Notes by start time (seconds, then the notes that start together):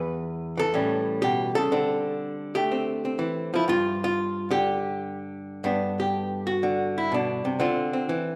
Already playing: E2 E4 B4
0.57 E3 A4
0.74 A2 G3 C#4
1.22 B2 G4
1.55 C#3 A4
1.72 D3 C4
2.55 A3 G4
2.72 C4
3.05 C4
3.19 E3
3.54 F3 E4
3.68 G2 F4
4.04 F4
4.51 D3 G4
5.64 G2 B3 D4
6.00 G4
6.47 F#4
6.63 D3
6.98 E4
7.12 B2 D4
7.45 C3
7.60 D3 C4 F4
7.93 C4
8.09 E3